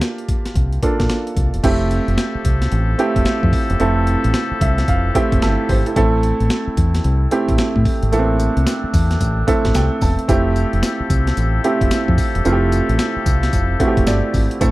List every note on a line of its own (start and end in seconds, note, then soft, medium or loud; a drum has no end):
0.00 0.49 A#3 medium
0.00 0.49 D4 medium
0.00 0.49 F4 medium
0.00 0.49 G4 medium
0.00 snare loud
0.00 closed hi-hat medium
0.18 closed hi-hat medium
0.28 kick medium
0.28 closed hi-hat medium
0.45 snare medium
0.45 closed hi-hat soft
0.55 0.77 C2 loud
0.55 kick medium
0.55 closed hi-hat medium
0.73 closed hi-hat soft
0.83 1.59 A#3 medium
0.83 1.59 D4 medium
0.83 1.59 F4 medium
0.83 1.59 A4 medium
0.83 kick medium
0.83 closed hi-hat medium
1.00 1.08 A#1 medium
1.00 kick medium
1.00 snare medium
1.00 closed hi-hat soft
1.09 snare loud
1.09 closed hi-hat medium
1.27 closed hi-hat medium
1.37 1.50 C2 medium
1.37 kick medium
1.37 closed hi-hat medium
1.54 1.62 E1 medium
1.54 closed hi-hat medium
1.63 1.98 F1 loud
1.63 5.92 F3 medium
1.63 2.65 A3 medium
1.63 2.65 C4 medium
1.63 14.57 C4 medium
1.63 8.08 E4 medium
1.63 2.65 E4 medium
1.63 5.92 G4 medium
1.63 2.65 G4 loud
1.63 5.92 A4 medium
1.63 kick loud
1.63 closed hi-hat medium
1.63 crash loud
1.91 closed hi-hat medium
2.08 2.16 F1 medium
2.08 closed hi-hat medium
2.18 snare loud
2.18 closed hi-hat medium
2.35 muted fingered electric bass stroke soft
2.45 2.66 C2 medium
2.45 kick medium
2.45 closed hi-hat medium
2.62 snare medium
2.62 closed hi-hat medium
2.72 2.93 A1 loud
2.72 closed hi-hat medium
2.98 3.75 A3 medium
2.98 3.75 C4 medium
2.98 3.75 E4 medium
2.98 3.75 G4 loud
2.98 closed hi-hat medium
3.16 3.24 F1 medium
3.16 kick medium
3.16 closed hi-hat medium
3.25 snare loud
3.25 closed hi-hat medium
3.43 3.51 F2 loud
3.43 kick loud
3.53 kick loud
3.53 open hi-hat medium
3.70 3.78 E1 loud
3.70 closed hi-hat medium
3.80 4.15 F1 loud
3.80 4.81 A3 medium
3.80 4.81 C4 medium
3.80 4.81 E4 medium
3.80 4.82 A4 medium
3.80 closed hi-hat medium
4.07 closed hi-hat medium
4.24 4.32 A1 medium
4.24 closed hi-hat medium
4.34 snare loud
4.34 closed hi-hat medium
4.51 muted fingered electric bass stroke medium
4.61 4.82 C2 loud
4.61 4.87 E5 medium
4.61 kick loud
4.61 closed hi-hat medium
4.78 snare medium
4.78 closed hi-hat medium
4.88 5.09 F1 medium
4.88 5.13 F5 medium
4.88 kick medium
4.88 closed hi-hat medium
5.15 5.91 A3 medium
5.15 5.91 C4 medium
5.15 5.42 E4 medium
5.15 5.43 G4 medium
5.15 5.40 G5 medium
5.15 kick medium
5.15 closed hi-hat medium
5.32 5.40 F1 medium
5.32 kick loud
5.32 closed hi-hat medium
5.42 5.56 G1 medium
5.42 5.68 A4 medium
5.42 5.68 E5 medium
5.42 5.93 A5 medium
5.42 snare loud
5.42 closed hi-hat medium
5.69 5.83 G#1 medium
5.69 5.86 G4 medium
5.69 5.85 C5 medium
5.69 kick medium
5.69 open hi-hat medium
5.86 5.95 E4 medium
5.86 5.96 A4 medium
5.86 closed hi-hat medium
5.96 6.31 A1 loud
5.96 6.97 A3 medium
5.96 10.12 A3 medium
5.96 6.98 C4 medium
5.96 6.98 E4 medium
5.96 6.98 A4 loud
5.96 kick loud
5.96 closed hi-hat medium
6.23 closed hi-hat medium
6.40 6.48 A1 medium
6.40 closed hi-hat medium
6.50 snare loud
6.50 closed hi-hat medium
6.67 muted fingered electric bass stroke soft
6.77 6.98 E2 medium
6.77 kick loud
6.77 closed hi-hat medium
6.95 snare medium
6.95 closed hi-hat medium
7.04 7.26 C2 loud
7.04 closed hi-hat medium
7.31 8.07 A3 medium
7.31 8.07 C4 medium
7.31 8.08 E4 medium
7.31 8.08 G4 medium
7.31 closed hi-hat medium
7.49 7.56 A1 medium
7.49 kick loud
7.49 closed hi-hat medium
7.58 snare loud
7.58 closed hi-hat medium
7.76 7.83 A2 loud
7.76 kick medium
7.85 kick medium
7.85 open hi-hat medium
8.03 8.10 G#1 medium
8.03 closed hi-hat medium
8.12 8.47 A1 loud
8.12 9.13 A3 medium
8.12 8.21 A#3 medium
8.12 10.12 D4 medium
8.12 9.14 E4 medium
8.12 9.14 A4 medium
8.12 closed hi-hat medium
8.12 tambourine medium
8.19 9.17 C4 medium
8.40 closed hi-hat medium
8.40 tambourine medium
8.57 8.64 C2 medium
8.57 closed hi-hat medium
8.67 snare loud
8.67 closed hi-hat medium
8.67 tambourine medium
8.84 muted fingered electric bass stroke soft
8.94 9.15 E2 medium
8.94 kick loud
8.94 open hi-hat medium
8.94 tambourine medium
9.11 snare medium
9.11 closed hi-hat medium
9.20 9.42 A1 loud
9.20 kick medium
9.20 closed hi-hat medium
9.20 tambourine medium
9.47 10.23 A3 medium
9.47 10.23 C4 medium
9.47 10.24 E4 medium
9.47 10.24 A4 loud
9.47 9.73 E5 medium
9.47 kick medium
9.47 closed hi-hat medium
9.65 9.73 A1 medium
9.65 kick loud
9.65 snare medium
9.65 closed hi-hat medium
9.74 9.88 C2 medium
9.74 10.00 G5 medium
9.74 snare loud
9.74 closed hi-hat medium
9.74 tambourine medium
10.01 10.15 E1 medium
10.01 10.27 A5 medium
10.01 kick medium
10.01 open hi-hat medium
10.01 tambourine medium
10.19 closed hi-hat medium
10.28 10.63 F1 loud
10.28 14.57 F3 medium
10.28 11.30 A3 medium
10.28 11.30 C4 medium
10.28 14.71 E4 medium
10.28 11.30 E4 medium
10.28 14.57 G4 medium
10.28 11.30 G4 loud
10.28 14.57 A4 medium
10.28 kick loud
10.28 closed hi-hat medium
10.28 tambourine medium
10.56 closed hi-hat medium
10.56 tambourine medium
10.73 10.81 F1 medium
10.73 closed hi-hat medium
10.83 snare loud
10.83 closed hi-hat medium
10.83 tambourine medium
11.00 muted fingered electric bass stroke soft
11.10 11.31 C2 medium
11.10 kick loud
11.10 closed hi-hat medium
11.10 tambourine medium
11.27 snare medium
11.27 closed hi-hat medium
11.37 11.58 A1 medium
11.37 closed hi-hat medium
11.37 tambourine medium
11.64 12.40 A3 medium
11.64 12.40 C4 medium
11.64 12.40 E4 medium
11.64 12.40 G4 medium
11.64 closed hi-hat medium
11.81 11.89 F1 medium
11.81 kick medium
11.81 closed hi-hat medium
11.91 snare loud
11.91 closed hi-hat medium
11.91 tambourine medium
12.08 12.16 F2 loud
12.08 kick medium
12.18 kick medium
12.18 open hi-hat medium
12.18 tambourine medium
12.35 12.43 E1 medium
12.35 closed hi-hat medium
12.45 12.80 F1 loud
12.45 13.46 A3 medium
12.45 13.46 C4 medium
12.45 13.46 E4 medium
12.45 12.54 F4 medium
12.45 closed hi-hat medium
12.45 tambourine medium
12.52 13.50 G4 medium
12.72 closed hi-hat medium
12.72 tambourine medium
12.89 12.97 A1 medium
12.89 closed hi-hat medium
12.99 snare loud
12.99 closed hi-hat medium
12.99 tambourine medium
13.16 muted fingered electric bass stroke soft
13.26 13.47 C2 medium
13.26 kick loud
13.26 closed hi-hat medium
13.26 tambourine medium
13.43 snare medium
13.43 closed hi-hat medium
13.53 13.74 F1 loud
13.53 kick medium
13.53 closed hi-hat medium
13.53 tambourine medium
13.80 14.56 A3 medium
13.80 14.56 C4 medium
13.80 14.56 E4 medium
13.80 13.89 F#4 medium
13.80 kick medium
13.80 closed hi-hat medium
13.87 14.59 G4 medium
13.97 14.05 F1 medium
13.97 kick medium
13.97 closed hi-hat medium
14.07 14.20 G1 loud
14.07 14.58 D5 medium
14.07 snare loud
14.07 closed hi-hat medium
14.07 tambourine loud
14.34 14.47 G#1 medium
14.34 kick medium
14.34 open hi-hat medium
14.34 tambourine medium
14.51 closed hi-hat medium
14.61 14.71 A1 loud
14.61 14.71 A3 medium
14.61 14.71 C4 medium
14.61 14.71 E4 medium
14.61 14.71 A4 medium
14.61 kick loud
14.61 closed hi-hat medium
14.61 tambourine medium